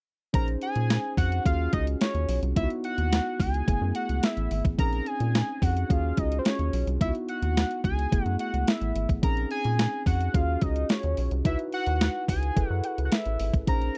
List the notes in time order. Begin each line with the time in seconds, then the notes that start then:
0.33 A#1 C#4 D#4 G#4 C5 A#5, kick, closed hi-hat
0.48 closed hi-hat
0.62 G#5, closed hi-hat
0.76 A#2, closed hi-hat
0.90 snare, closed hi-hat
1.17 F2 F#5, kick, open hi-hat
1.32 closed hi-hat
1.44 D#2 C#4 F4 F#4 G#4 F5, kick, closed hi-hat
1.73 C#2 D#5, kick, closed hi-hat
1.87 closed hi-hat
2.01 C#5, snare, closed hi-hat
2.15 D#2, closed hi-hat
2.29 B1, open hi-hat
2.42 C2, closed hi-hat
2.56 C#2 B3 D#4 E4 F4 E5, kick, closed hi-hat
2.64 F#4
2.70 closed hi-hat
2.84 F#5, closed hi-hat
2.98 D#2, closed hi-hat
3.12 snare, closed hi-hat
3.40 C#2 G#5, kick, open hi-hat
3.54 closed hi-hat
3.66 F#1 A3 B3 E4 G#4, kick, closed hi-hat
3.82 F#2
3.95 F#5, closed hi-hat
4.09 C#2, closed hi-hat
4.23 E5, snare, closed hi-hat
4.37 A1, closed hi-hat
4.51 G#1, open hi-hat
4.65 A1, kick, closed hi-hat
4.78 A#1 C4 C#4 D#4 G#4 A#5, kick, closed hi-hat
4.93 closed hi-hat
5.06 G#5, closed hi-hat
5.20 A#2, closed hi-hat
5.35 snare, closed hi-hat
5.62 F2 F#5, kick, open hi-hat
5.77 closed hi-hat
5.89 D#2 C#4 F4 F#4 G#4 F5, kick, closed hi-hat
6.17 C#2 D#5, kick, closed hi-hat
6.32 closed hi-hat
6.39 C5
6.45 C#5, snare, closed hi-hat
6.59 D#2, closed hi-hat
6.73 B1, open hi-hat
6.87 C2, closed hi-hat
7.00 C#2 B3 D#4 E4 F4 E5, kick, closed hi-hat
7.08 F#4
7.15 closed hi-hat
7.29 F#5, closed hi-hat
7.42 D#2, closed hi-hat
7.57 snare, closed hi-hat
7.71 closed hi-hat
7.84 C#2 G#5, kick, closed hi-hat
7.99 closed hi-hat
8.11 F#1 A3 B3 E4 G#4, kick, closed hi-hat
8.24 F#2 F#5, closed hi-hat
8.39 F#5, closed hi-hat
8.54 C#2, closed hi-hat
8.61 F#5
8.67 E5, snare, closed hi-hat
8.81 A1, closed hi-hat
8.95 G#1, closed hi-hat
9.09 A1, kick, closed hi-hat
9.22 A#1 C4 C#4 D#4 G#4 A#5, kick, closed hi-hat
9.37 closed hi-hat
9.51 G#5, closed hi-hat
9.64 A#2, closed hi-hat
9.79 snare, closed hi-hat
10.06 F2 F#5, kick, open hi-hat
10.21 closed hi-hat
10.33 D#2 C#4 F4 F#4 G#4 F5, kick, closed hi-hat
10.61 C#2 D#5, kick, closed hi-hat
10.76 closed hi-hat
10.89 C#5, snare, closed hi-hat
11.03 D#2, closed hi-hat
11.17 B1, open hi-hat
11.31 C2, closed hi-hat
11.44 C#2 D#4 E4 F#4 B4 E5, kick, closed hi-hat
11.59 closed hi-hat
11.73 F#5, closed hi-hat
11.86 D#2, closed hi-hat
12.01 snare, closed hi-hat
12.28 C#2 G#5, kick, open hi-hat
12.43 closed hi-hat
12.56 F#1 E4 G#4 A4 B4, kick, closed hi-hat
12.69 F#2 F#5
12.84 F#5, closed hi-hat
12.98 C#2, closed hi-hat
13.05 F#5
13.12 E5, snare, closed hi-hat
13.26 A1, closed hi-hat
13.40 G#1, open hi-hat
13.54 A1, kick, closed hi-hat
13.67 A#1 C#4 D#4 G#4 C5 A#5, kick, closed hi-hat
13.81 closed hi-hat